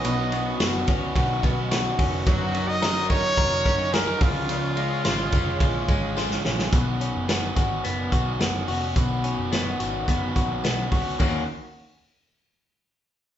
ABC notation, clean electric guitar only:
X:1
M:4/4
L:1/16
Q:1/4=108
K:Cblyd
V:1 name="Clean electric guitar"
[=B,,=B,^C^F]2 B,2 F2 C2 F2 B,2 F2 C2 | G,2 D2 B2 E2 B2 D2 A B D,2 | D,2 A,2 F2 D2 F2 A,2 F2 D2 | =B,,2 ^C2 =B,2 ^F2 B,2 F2 B,2 F2 |
=B,,2 ^C2 =B,2 ^F2 B,2 F2 B,2 F2 | [E,B,DG]2 z12 z2 |]